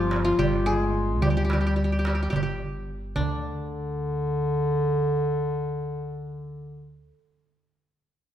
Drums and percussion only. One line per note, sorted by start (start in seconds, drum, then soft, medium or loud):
0.11 darbuka tek medium
0.39 darbuka dum medium
1.22 darbuka dum medium
1.50 darbuka tek medium
1.78 darbuka ka soft
1.92 darbuka ka soft
2.05 darbuka tek medium
2.33 darbuka dum medium
3.16 darbuka dum medium